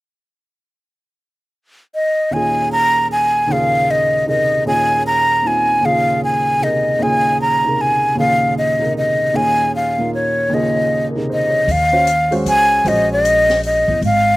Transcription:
1.95 2.35 D#5 medium
2.31 3.45 D#2 soft
2.31 3.47 A#2 soft
2.31 3.49 C#4 soft
2.31 3.49 F4 soft
2.31 2.71 G#5 medium
2.36 3.51 G#4 soft
2.72 3.08 A#5 medium
3.12 3.53 G#5 medium
3.47 4.64 D#2 soft
3.47 4.64 A#2 soft
3.47 4.66 C#3 soft
3.47 4.65 F4 soft
3.52 4.26 G#4 medium
3.52 3.92 F5 medium
3.91 4.28 D#5 medium
4.26 4.65 C3 soft
4.26 4.66 D#4 soft
4.26 4.66 G#4 soft
4.26 4.67 A#4 soft
4.26 4.64 D#5 medium
4.66 5.79 D#2 soft
4.66 5.41 A#2 soft
4.66 5.83 C#4 soft
4.66 5.44 F4 soft
4.66 5.83 G#4 medium
4.66 5.03 G#5 medium
5.07 5.49 A#5 medium
5.43 5.81 A#2 soft
5.43 5.82 C4 soft
5.43 5.83 D#4 soft
5.43 5.83 F4 soft
5.47 5.87 G#5 medium
5.81 6.97 D#2 soft
5.81 6.98 A#2 soft
5.81 6.99 C#3 soft
5.85 7.01 F4 soft
5.85 6.61 G#4 soft
5.85 6.23 F5 medium
6.25 6.65 G#5 medium
6.60 7.00 C3 soft
6.60 7.00 D#4 soft
6.60 7.01 G#4 soft
6.60 7.01 A#4 soft
6.60 7.04 D#5 medium
6.98 8.13 D#2 soft
6.98 8.14 A#2 soft
6.98 8.16 C#3 soft
6.98 8.17 F4 soft
7.03 7.65 G#4 medium
7.03 7.40 G#5 medium
7.42 7.83 A#5 medium
7.65 8.17 C3 soft
7.65 8.17 D#4 soft
7.65 8.18 G#4 soft
7.65 8.18 A#4 soft
7.81 8.18 G#5 medium
8.15 9.32 D#2 soft
8.15 9.32 A#2 soft
8.15 9.34 C#3 soft
8.15 9.34 F4 soft
8.19 8.80 G#4 soft
8.19 8.54 F5 medium
8.58 8.93 D#5 medium
8.79 9.33 C3 soft
8.79 9.34 D#4 soft
8.79 9.34 G#4 soft
8.79 9.35 A#4 soft
8.98 9.38 D#5 medium
9.34 10.48 D#2 soft
9.34 9.97 A#2 soft
9.34 10.51 C#4 soft
9.34 10.00 F4 soft
9.34 10.52 G#4 soft
9.34 9.74 G#5 medium
9.76 10.11 F5 medium
9.98 10.49 A#2 soft
9.98 10.51 A#3 soft
9.98 10.52 D#4 soft
9.98 10.51 F4 soft
10.15 10.55 C#5 medium
10.49 11.67 D#2 soft
10.49 11.68 A#2 soft
10.49 11.68 C#3 soft
10.49 11.69 F4 soft
10.54 11.16 G#4 soft
10.54 11.06 D#5 medium
11.10 11.17 A#4 soft
11.15 11.68 C3 soft
11.15 11.68 D#4 soft
11.15 11.69 G#4 soft
11.15 11.69 A#4 soft
11.30 11.59 C5 soft
11.30 11.73 D#5 medium
11.49 11.76 C#5 soft
11.67 12.42 D#2 medium
11.67 open hi-hat soft
11.71 12.34 F5 medium
11.92 12.05 C#4 medium
11.92 12.06 F#4 soft
11.92 12.06 C5 medium
11.92 12.06 F5 medium
12.07 closed hi-hat soft
12.31 12.82 G#3 medium
12.31 12.82 C#4 medium
12.31 12.82 F#4 medium
12.31 12.83 C5 medium
12.31 open hi-hat soft
12.46 12.82 C#2 medium
12.46 12.90 G#5 medium
12.46 closed hi-hat soft
12.85 13.84 A#1 medium
12.85 13.94 G#3 medium
12.85 13.94 C#4 medium
12.85 13.94 F#4 medium
12.85 13.94 C5 medium
12.85 13.12 D#5 medium
12.85 open hi-hat soft
13.13 13.61 D#5 medium
13.25 closed hi-hat soft
13.49 snare soft
13.49 open hi-hat soft
13.63 14.01 D#5 medium
13.63 open hi-hat soft
13.88 14.01 E2 medium
13.88 kick soft
14.02 14.37 G#1 medium
14.02 14.37 F5 medium
14.02 open hi-hat soft

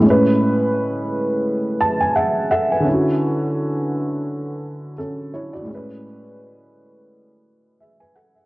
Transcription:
0.00 2.79 A2 medium
0.00 2.81 G#3 medium
0.06 2.83 C#4 medium
0.06 1.80 B4 medium
1.80 1.99 A5 medium
2.00 2.14 G#5 medium
2.15 2.49 G#4 medium
2.15 2.49 E5 medium
2.15 2.48 F#5 medium
2.51 2.70 A4 medium
2.51 2.83 E5 medium
2.51 2.70 F#5 medium
2.71 3.05 B4 soft
2.71 3.04 G#5 medium
2.80 5.61 D3 medium
2.84 4.93 C#4 medium
2.84 4.95 E4 medium
2.93 4.97 F#4 medium
4.98 5.32 C#4 soft
4.98 5.31 A4 medium
5.34 5.53 E4 medium
5.34 5.52 C#5 medium
5.53 5.87 F#4 soft
5.53 5.87 D5 medium
5.62 8.43 A2 medium
5.66 8.46 G#3 medium
5.66 8.46 C#4 medium
5.75 7.79 B4 medium
7.80 7.99 G#4 soft
7.80 7.99 E5 medium
8.00 8.15 B4 soft
8.00 8.15 G#5 medium
8.16 8.35 A4 medium
8.16 8.34 F#5 medium
8.35 8.46 G#4 soft
8.35 8.46 E5 medium

